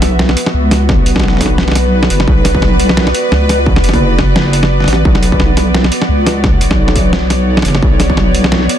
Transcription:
0.00 0.36 B1 loud
0.00 8.79 B3 medium
0.00 8.79 F#4 medium
0.00 5.03 B4 loud
0.00 8.79 D5 medium
0.00 snare medium
0.00 closed hi-hat medium
0.19 snare loud
0.29 snare medium
0.37 closed hi-hat medium
0.46 snare medium
0.54 1.05 C#2 loud
0.71 snare medium
0.71 closed hi-hat medium
0.89 kick loud
0.89 snare medium
1.06 2.09 B1 loud
1.06 closed hi-hat medium
1.16 kick loud
1.16 snare medium
1.20 snare medium
1.23 snare medium
1.28 snare soft
1.33 snare soft
1.37 snare soft
1.41 kick medium
1.41 snare soft
1.41 closed hi-hat medium
1.46 snare soft
1.58 snare loud
1.58 snare soft
1.63 snare soft
1.68 snare medium
1.71 snare medium
1.75 snare medium
1.75 closed hi-hat medium
2.03 snare medium
2.10 2.27 F#1 loud
2.10 closed hi-hat medium
2.20 snare medium
2.28 2.61 B1 loud
2.28 kick loud
2.45 snare medium
2.45 closed hi-hat medium
2.55 kick loud
2.62 3.13 B1 loud
2.62 snare medium
2.80 closed hi-hat medium
2.89 snare medium
2.97 snare loud
3.07 snare soft
3.14 closed hi-hat medium
3.32 3.82 C#2 medium
3.32 snare medium
3.49 snare soft
3.49 closed hi-hat medium
3.66 kick loud
3.76 snare medium
3.83 4.86 F#1 loud
3.83 closed hi-hat medium
3.89 snare soft
3.94 kick loud
3.94 closed hi-hat soft
4.19 kick medium
4.19 snare medium
4.36 snare loud
4.36 snare medium
4.53 closed hi-hat medium
4.63 snare medium
4.80 snare soft
4.84 5.04 A1 medium
4.84 snare soft
4.88 snare soft
4.88 closed hi-hat medium
4.93 snare soft
5.05 5.39 B1 loud
5.05 8.79 C#5 loud
5.05 kick loud
5.15 snare medium
5.23 closed hi-hat medium
5.32 kick loud
5.40 5.91 B1 loud
5.40 snare medium
5.57 snare medium
5.57 closed hi-hat medium
5.74 snare loud
5.84 snare medium
5.92 closed hi-hat medium
6.02 snare medium
6.09 6.60 C#2 medium
6.26 snare medium
6.26 closed hi-hat medium
6.44 kick loud
6.44 snare medium
6.61 7.64 B1 loud
6.61 closed hi-hat medium
6.71 kick loud
6.71 snare medium
6.88 snare medium
6.96 kick medium
6.96 closed hi-hat medium
7.13 snare loud
7.13 snare medium
7.30 snare medium
7.30 closed hi-hat medium
7.57 snare medium
7.62 7.81 F#1 loud
7.62 snare medium
7.62 closed hi-hat medium
7.68 snare soft
7.75 snare medium
7.83 8.16 B1 loud
7.83 kick loud
8.00 snare medium
8.00 closed hi-hat medium
8.10 kick loud
8.17 8.68 B1 loud
8.17 snare medium
8.35 closed hi-hat medium
8.44 snare medium
8.52 snare loud
8.69 closed hi-hat medium

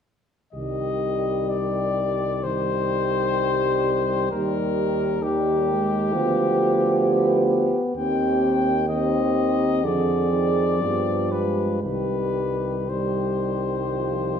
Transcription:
0.53 4.29 C2 soft
0.53 2.41 D#3 soft
0.53 2.40 G3 soft
0.53 2.40 G4 soft
0.53 1.51 D#5 soft
1.49 2.45 D5 soft
2.43 4.29 D#3 soft
2.43 4.29 G3 soft
2.43 4.29 G4 soft
2.43 4.31 C5 medium
4.32 6.15 D#2 soft
4.32 5.21 D#3 soft
4.32 5.21 G3 soft
4.32 5.21 G4 soft
4.32 5.24 A#4 medium
5.22 6.14 D#3 soft
5.22 5.67 G3 soft
5.22 7.50 G4 medium
5.22 6.12 G4 soft
5.68 6.14 G#3 soft
6.13 7.79 D2 soft
6.13 7.79 F3 soft
6.13 7.97 B3 soft
6.13 7.80 G4 soft
7.96 9.85 D#2 soft
7.96 8.85 D#3 soft
7.96 8.72 C4 soft
7.96 8.85 G4 soft
7.96 8.85 G5 medium
8.88 9.85 D#3 soft
8.88 9.82 C4 soft
8.88 9.83 G4 soft
8.88 9.86 D#5 soft
9.83 10.82 F2 soft
9.83 10.31 D3 soft
9.83 10.79 C4 soft
9.83 10.79 G#4 soft
9.83 11.33 D5 soft
10.32 10.79 D#3 soft
10.79 11.82 G2 soft
10.79 11.80 F3 soft
10.79 11.31 B3 soft
10.79 11.82 G4 soft
11.31 11.83 G#3 soft
11.31 11.82 B4 soft
11.83 14.40 C2 soft
11.83 12.87 D#3 soft
11.83 12.88 G3 soft
11.83 12.87 G4 soft
11.83 12.91 B4 soft
12.89 14.40 D#3 soft
12.89 13.90 G3 soft
12.89 14.40 G4 soft
12.89 14.40 C5 soft
13.93 14.40 F3 soft

